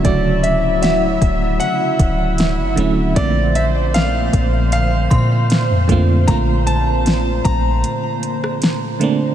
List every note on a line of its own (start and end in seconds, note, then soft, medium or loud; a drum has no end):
0.00 0.03 D3 medium
0.00 1.29 D3 medium
0.00 0.04 F#3 medium
0.00 3.12 F#3 medium
0.00 1.29 F#3 medium
0.00 0.05 A3 medium
0.00 2.79 C#4 medium
0.00 3.12 E4 medium
0.00 0.07 F#4 loud
0.00 3.12 E5 medium
0.00 0.36 A5 medium
0.00 0.58 C#6 medium
0.05 1.18 D1 loud
0.05 1.30 C#3 medium
0.05 1.30 A3 medium
0.05 1.31 F#4 medium
0.05 0.45 D5 medium
0.05 kick loud
0.05 closed hi-hat medium
0.43 0.81 E5 medium
0.43 closed hi-hat medium
0.82 1.63 E5 medium
0.82 3.51 F#5 medium
0.82 snare loud
0.82 closed hi-hat medium
1.22 1.59 D1 loud
1.22 kick medium
1.22 closed hi-hat medium
1.60 2.73 F#5 loud
1.60 closed hi-hat medium
1.99 2.60 D1 loud
1.99 kick loud
1.99 closed hi-hat medium
2.38 snare loud
2.38 closed hi-hat medium
2.58 2.77 F#1 medium
2.76 3.15 D1 loud
2.76 3.08 D3 medium
2.76 3.08 F#3 medium
2.76 3.09 A3 medium
2.76 3.09 C#4 medium
2.76 closed hi-hat medium
2.80 3.10 E4 loud
3.15 4.29 A#1 loud
3.15 9.35 A#2 medium
3.15 4.40 D3 medium
3.15 4.41 A3 medium
3.15 4.41 A#3 medium
3.15 4.42 C4 medium
3.15 9.35 C5 medium
3.15 3.56 D5 loud
3.15 kick loud
3.15 closed hi-hat medium
3.55 3.64 E5 loud
3.55 closed hi-hat medium
3.94 4.71 F5 loud
3.94 snare loud
3.94 closed hi-hat medium
4.33 5.08 A#1 loud
4.33 kick medium
4.33 closed hi-hat medium
4.72 5.85 F5 loud
4.72 closed hi-hat medium
5.10 5.71 A#2 loud
5.10 8.14 C6 medium
5.10 kick loud
5.10 closed hi-hat medium
5.50 snare loud
5.50 closed hi-hat medium
5.70 5.88 F2 loud
5.87 6.26 F2 loud
5.87 6.19 D3 medium
5.87 6.20 A3 medium
5.87 6.21 A#3 medium
5.87 6.21 C4 medium
5.87 kick loud
5.87 closed hi-hat medium
5.92 6.22 F4 loud
6.27 7.41 A#1 loud
6.27 7.52 D3 medium
6.27 7.53 A3 medium
6.27 7.53 A#3 medium
6.27 7.54 C4 medium
6.27 6.36 A#5 loud
6.27 kick loud
6.27 closed hi-hat medium
6.31 7.54 F4 medium
6.67 7.41 A5 loud
6.67 closed hi-hat medium
7.06 snare loud
7.06 closed hi-hat medium
7.45 7.84 A#1 loud
7.45 8.58 A#5 loud
7.45 kick medium
7.45 closed hi-hat medium
7.84 closed hi-hat medium
8.23 closed hi-hat medium
8.44 cross-stick medium
8.62 snare loud
8.62 closed hi-hat medium
8.99 9.31 D3 medium
8.99 9.32 A3 medium
8.99 9.32 A#3 medium
8.99 9.33 C4 medium
8.99 closed hi-hat medium
9.04 9.33 D4 loud